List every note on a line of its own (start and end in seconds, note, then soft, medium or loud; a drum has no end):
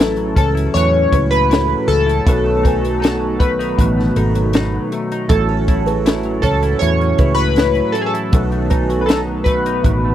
0.00 0.33 A1 loud
0.00 0.72 A2 medium
0.00 2.24 E3 medium
0.00 0.16 F#3 medium
0.00 0.36 F#3 medium
0.00 8.30 F#3 medium
0.00 10.15 A3 medium
0.00 0.34 C#4 medium
0.00 0.36 C#4 medium
0.00 2.24 C#4 medium
0.00 0.37 E4 medium
0.00 0.54 E4 medium
0.00 5.26 F#4 medium
0.00 0.33 A4 loud
0.00 0.37 A4 medium
0.00 snare loud
0.00 closed hi-hat medium
0.17 1.30 F#3 medium
0.17 closed hi-hat soft
0.35 0.67 C#2 medium
0.35 0.91 C#4 medium
0.35 0.51 A4 medium
0.35 0.74 A4 medium
0.35 0.73 C#5 medium
0.35 kick medium
0.35 closed hi-hat medium
0.55 1.11 E4 medium
0.55 closed hi-hat medium
0.74 1.05 E2 medium
0.74 2.26 A2 medium
0.74 1.88 F#3 medium
0.74 1.88 C#4 medium
0.74 1.89 E4 medium
0.74 1.89 B4 medium
0.74 1.33 C#5 loud
0.74 closed hi-hat medium
0.92 1.86 C#4 medium
1.12 1.73 C#2 loud
1.12 1.49 E4 medium
1.12 1.50 G#4 medium
1.12 1.49 B4 medium
1.12 kick medium
1.12 closed hi-hat medium
1.30 1.68 F#3 medium
1.30 1.90 B4 loud
1.30 closed hi-hat medium
1.50 2.05 E4 medium
1.50 2.06 A4 medium
1.50 2.05 C#5 medium
1.50 snare loud
1.50 closed hi-hat medium
1.68 2.81 F#3 medium
1.88 2.19 C#2 medium
1.88 2.34 C#4 medium
1.88 3.01 A4 loud
1.88 closed hi-hat medium
2.06 2.34 E4 medium
2.06 closed hi-hat medium
2.26 3.74 B1 loud
2.26 3.76 B2 medium
2.26 5.28 D#3 medium
2.26 3.39 A3 medium
2.26 5.28 B3 medium
2.26 3.40 D#4 medium
2.26 3.40 F#4 medium
2.26 2.64 A4 medium
2.26 3.41 B4 medium
2.26 2.64 C#5 medium
2.26 kick loud
2.26 closed hi-hat medium
2.44 3.39 A3 medium
2.63 2.99 D#4 medium
2.63 3.37 B4 medium
2.63 3.37 G#5 medium
2.63 kick medium
2.63 closed hi-hat medium
2.82 3.19 F#3 medium
2.82 closed hi-hat soft
3.00 3.58 D#4 medium
3.00 3.41 A4 medium
3.00 closed hi-hat medium
3.05 snare loud
3.20 4.35 F#3 medium
3.39 3.97 A3 medium
3.39 4.88 B4 medium
3.39 kick medium
3.39 closed hi-hat medium
3.59 4.15 D#4 medium
3.59 closed hi-hat medium
3.78 4.09 A1 medium
3.78 5.30 B2 medium
3.78 4.91 A3 medium
3.78 4.92 D#4 medium
3.78 4.92 F#4 medium
3.78 4.92 B4 medium
3.78 kick medium
3.78 closed hi-hat medium
3.97 4.92 A3 medium
3.97 snare soft
4.16 4.77 G#1 loud
4.16 4.53 D#4 medium
4.16 4.35 F#4 medium
4.16 4.34 A4 medium
4.16 closed hi-hat medium
4.35 4.74 F#3 medium
4.35 closed hi-hat medium
4.53 5.11 D#4 medium
4.53 snare loud
4.53 closed hi-hat medium
4.74 5.71 F#3 medium
4.92 5.49 A3 medium
4.92 closed hi-hat medium
5.12 5.38 D#4 medium
5.12 closed hi-hat medium
5.29 6.40 A1 loud
5.29 6.80 A2 medium
5.29 8.31 E3 medium
5.29 6.42 A3 medium
5.29 8.30 C#4 medium
5.29 6.43 E4 medium
5.29 6.43 F#4 medium
5.29 10.15 F#4 medium
5.29 6.41 A4 medium
5.29 6.44 C#5 medium
5.29 kick loud
5.29 closed hi-hat medium
5.49 6.42 C#4 medium
5.49 5.68 F#4 medium
5.49 5.67 A4 medium
5.68 6.04 E4 medium
5.68 kick medium
5.68 closed hi-hat medium
5.86 6.25 F#3 medium
5.86 6.05 G#4 medium
5.86 6.05 B4 medium
5.86 closed hi-hat medium
6.06 6.61 E4 medium
6.06 snare loud
6.06 closed hi-hat medium
6.23 7.39 F#3 medium
6.23 closed hi-hat soft
6.42 6.73 C#2 medium
6.42 6.99 C#4 medium
6.42 6.78 A4 loud
6.42 6.80 A4 medium
6.42 6.80 C#5 medium
6.42 kick medium
6.42 closed hi-hat medium
6.63 7.19 E4 medium
6.63 closed hi-hat medium
6.79 7.12 E2 loud
6.79 8.33 A2 medium
6.79 7.95 A3 medium
6.79 7.95 E4 medium
6.79 7.39 C#5 loud
6.79 closed hi-hat medium
6.83 7.95 F#4 medium
6.83 7.96 C#5 medium
7.00 7.93 C#4 medium
7.00 closed hi-hat soft
7.18 7.80 C#2 medium
7.18 7.56 E4 medium
7.18 7.56 G#4 medium
7.18 7.55 B4 medium
7.18 kick medium
7.18 closed hi-hat medium
7.35 7.95 B4 loud
7.35 closed hi-hat medium
7.39 7.75 F#3 medium
7.56 8.12 E4 medium
7.56 8.11 A4 medium
7.56 8.11 C#5 medium
7.56 snare loud
7.56 closed hi-hat medium
7.75 8.89 F#3 medium
7.75 closed hi-hat soft
7.92 8.40 C#4 medium
7.92 8.01 A4 loud
7.92 closed hi-hat medium
8.01 8.09 G#4 medium
8.06 9.05 A4 loud
8.14 8.41 E4 medium
8.14 closed hi-hat medium
8.32 9.81 B1 loud
8.32 9.84 B2 medium
8.32 10.15 D#3 medium
8.32 10.15 F#3 medium
8.32 9.46 A3 medium
8.32 10.15 B3 medium
8.32 9.46 D#4 medium
8.32 9.47 F#4 medium
8.32 8.70 A4 medium
8.32 9.47 B4 medium
8.32 8.70 C#5 medium
8.32 kick loud
8.32 closed hi-hat medium
8.52 9.47 A3 medium
8.52 closed hi-hat soft
8.70 9.08 D#4 medium
8.70 9.42 B4 medium
8.70 9.43 G#5 medium
8.70 kick medium
8.70 closed hi-hat medium
8.89 9.27 F#3 medium
8.89 closed hi-hat medium
9.01 9.09 B4 medium
9.06 9.65 D#4 medium
9.06 9.20 A4 medium
9.06 closed hi-hat medium
9.10 snare loud
9.27 10.15 F#3 medium
9.44 10.04 A3 medium
9.44 10.15 B4 medium
9.44 kick medium
9.44 closed hi-hat medium
9.66 10.15 D#4 medium
9.66 closed hi-hat medium
9.83 10.15 A1 medium
9.83 10.15 B2 medium
9.83 10.15 A3 medium
9.83 10.15 D#4 medium
9.83 10.15 F#4 medium
9.83 10.15 B4 medium
9.83 kick medium
9.83 closed hi-hat medium
10.04 10.15 A3 medium